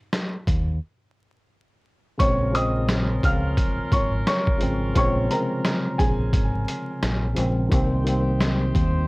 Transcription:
0.13 cross-stick, snare, closed hi-hat
0.47 D#2, kick, closed hi-hat
2.18 A#1 C#3 F3 G#3 C#4 F4 A#4 C#5 C#6, kick, closed hi-hat
2.22 C4
2.51 C#3 F3 G#3 D#6, closed hi-hat
2.56 C4 D#5
2.89 cross-stick, snare, closed hi-hat
3.23 C#2 F5 F6, kick, closed hi-hat
3.57 kick, closed hi-hat
3.79 muted fingered electric bass stroke
3.92 G#1 C#5 C#6, kick, closed hi-hat
4.27 C#5 C#6, cross-stick, snare, closed hi-hat
4.47 kick
4.58 G#1 C#3 F3 G#3, closed hi-hat
4.63 C4
4.94 A#1 C#3 F3 G#3 C#5 C#6, kick, closed hi-hat
4.99 C4
5.27 C3 F3 G#3 A#5, closed hi-hat
5.31 C#3 C4 A#4
5.64 cross-stick, snare, closed hi-hat
5.98 A#1 G#4 G#5, kick, closed hi-hat
6.33 G#1, kick, closed hi-hat
6.68 closed hi-hat
7.03 A#1, cross-stick, snare, closed hi-hat
7.34 A#1 C#3 F3 G#3, closed hi-hat
7.39 C4
7.69 C2 D#3 G3 A#3 D#4 G4 C5, kick, closed hi-hat
7.74 C4
8.04 D#3 G3 A#3, closed hi-hat
8.08 C4
8.40 cross-stick, snare, closed hi-hat
8.75 D#2, kick, closed hi-hat

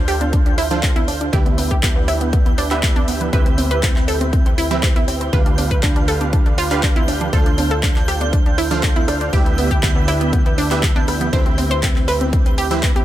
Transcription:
Already playing: D2 D4 F4 A4 C5 F5 G6
0.08 G4, open hi-hat, high bongo
0.21 D4, closed hi-hat, high conga
0.33 D4, kick, closed hi-hat
0.46 D4, closed hi-hat
0.58 E4, open hi-hat, high bongo
0.71 D4 F4 A4 C5 F5, closed hi-hat, low conga
0.83 D4, kick, clap, closed hi-hat
0.96 E4, closed hi-hat, high conga
1.08 D4, open hi-hat, high bongo
1.21 D4, closed hi-hat
1.33 D2 D4 E4 G4 B4 E5, kick, closed hi-hat
1.46 B3, closed hi-hat
1.58 B3, open hi-hat, high bongo, high conga
1.71 G4, kick, closed hi-hat
1.83 B3, kick, clap, closed hi-hat
1.96 B3
2.08 E4, open hi-hat, high bongo
2.21 B3, closed hi-hat, high conga
2.33 B3, kick, closed hi-hat
2.46 B3, closed hi-hat
2.58 D4, open hi-hat, high bongo
2.71 B3 D4 E4 G4 B4 E5, clap, closed hi-hat
2.83 B3, kick, clap, closed hi-hat
2.96 D4, closed hi-hat, high conga
3.08 B3, open hi-hat, high bongo
3.21 B3, closed hi-hat, low conga
3.33 D2 C4 E4 G4 B4 E5, kick, closed hi-hat
3.46 C4, closed hi-hat
3.58 C4, open hi-hat, high bongo, high conga
3.71 B4, closed hi-hat
3.83 C4, kick, clap, closed hi-hat
3.96 C4, clap
4.08 A4, open hi-hat, high bongo
4.21 C4, closed hi-hat, high conga
4.33 C4, kick, closed hi-hat
4.46 C4, closed hi-hat
4.58 E4, open hi-hat, high bongo
4.71 C4 E4 G4 B4 E5, closed hi-hat, low conga
4.83 C4, kick, clap, closed hi-hat
4.96 E4, closed hi-hat, high conga
5.08 C4, open hi-hat, high bongo
5.21 C4, closed hi-hat
5.33 D2 D4 F4 G4 B4 F5, kick, closed hi-hat
5.46 D4, closed hi-hat
5.58 D4, open hi-hat, high bongo, high conga
5.71 B4, kick, closed hi-hat
5.83 D4, kick, clap, closed hi-hat
5.96 D4, closed hi-hat
6.08 A4, open hi-hat, high bongo
6.21 D4, closed hi-hat, high conga
6.33 D4, kick, closed hi-hat
6.46 D4, closed hi-hat
6.58 F4, open hi-hat, high bongo
6.71 D4 F4 G4 B4 F5, clap, closed hi-hat
6.83 D4, kick, clap, closed hi-hat
6.96 E4, closed hi-hat, high conga
7.08 D4, open hi-hat, high bongo
7.21 D4, closed hi-hat, low conga
7.33 D2 D4 F4 A4 C5 F5, kick, closed hi-hat
7.46 D4, closed hi-hat
7.58 D4, open hi-hat, high bongo, high conga
7.71 A4, closed hi-hat
7.83 D4, kick, clap, closed hi-hat
7.96 D4, clap
8.08 G4, cross-stick, open hi-hat, high bongo
8.21 D4, closed hi-hat, high conga
8.33 D4, kick, closed hi-hat
8.46 D4, closed hi-hat
8.58 E4, open hi-hat, high bongo
8.71 D4 F4 A4 C5 F5, closed hi-hat, low conga
8.83 D4, kick, clap, closed hi-hat
8.96 E4, closed hi-hat, high conga
9.08 D4, cross-stick, open hi-hat, high bongo
9.21 D4, closed hi-hat
9.33 D2 D4 E4 G4 B4 E5, kick, closed hi-hat
9.46 B3, closed hi-hat
9.58 B3, open hi-hat, high bongo, high conga
9.71 G4, kick, closed hi-hat
9.83 B3, kick, clap, closed hi-hat
9.96 B3
10.08 E4, open hi-hat, high bongo
10.21 B3, closed hi-hat, high conga
10.33 B3, kick, closed hi-hat
10.46 B3, closed hi-hat
10.58 D4, open hi-hat, high bongo
10.71 B3 D4 E4 G4 B4 E5, clap, closed hi-hat
10.83 B3, kick, clap, closed hi-hat
10.96 D4, closed hi-hat, high conga
11.08 B3, cross-stick, open hi-hat, high bongo
11.21 B3, closed hi-hat, low conga
11.33 D2 C4 E4 G4 B4 C5 E5, kick, closed hi-hat
11.46 C4, closed hi-hat
11.58 C4, open hi-hat, high bongo, high conga
11.71 C5, closed hi-hat
11.83 C4, kick, clap, closed hi-hat
11.96 C4, clap
12.08 B4, cross-stick, open hi-hat, high bongo
12.21 C4, closed hi-hat, high conga
12.33 C4, kick, closed hi-hat
12.46 C4, closed hi-hat
12.58 G4, open hi-hat, high bongo
12.71 C4 E4 G4 B4 E5, closed hi-hat, low conga
12.83 C4, kick, clap, closed hi-hat
12.96 G4, closed hi-hat, high conga

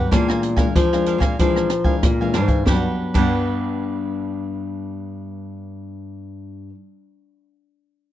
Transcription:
0.11 A#2 E3 G#3 D4 A#4 F5 G#5, kick, cross-stick, closed hi-hat
0.28 A#4 F5 G#5, cross-stick, closed hi-hat
0.43 muted cavaquinho stroke, closed hi-hat
0.56 E3 G#3 D4 A#4 F5 G#5, kick, cross-stick, closed hi-hat
0.76 F2 F3 D4 A#4 F5 G#5, kick, closed hi-hat
0.93 G#3 D4 A#4 F5 G#5, cross-stick, closed hi-hat
1.06 D4 A#4 F5 G#5, closed hi-hat
1.18 A#2 A#4 F5 G#5, kick, cross-stick, closed hi-hat
1.39 A#2 E3 F3 G#3 D4 A#4 F5 G#5, kick, closed hi-hat
1.56 cross-stick
1.70 muted cavaquinho stroke, cross-stick, closed hi-hat
1.84 E3 G#3 D4 A#4 F5 G#5, kick
2.03 F2 A#2, kick, cross-stick, closed hi-hat
2.21 E3 G#3 D4 A#4 F5 G#5
2.34 G#2 D4 A#4 F5 G#5, cross-stick, closed hi-hat
2.48 A#4 F5 G#5, kick, closed hi-hat
2.66 G2 F#3 D4 G4 B4 F#5, kick, snare
2.70 B3 D4
3.13 G2 D4 G4 B4, kick, crash
3.17 B3 D4 F#5

